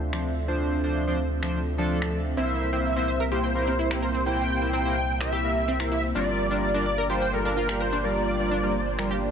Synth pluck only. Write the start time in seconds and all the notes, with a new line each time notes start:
2.37 C4
2.73 C4
2.96 C4
3.08 C5
3.20 A#4
3.32 G4
3.44 G5
3.67 C4
3.79 E4
3.91 G4
4.03 A#4
4.15 C4
4.73 C4
5.33 G4
5.68 C4
5.80 A#4
5.92 E4
6.15 D4
6.51 D4
6.74 D4
6.86 D5
6.98 A#4
7.10 G4
7.22 G5
7.45 D4
7.57 F4
7.69 G4
7.80 A#4
7.92 D4
8.51 D4
9.11 G4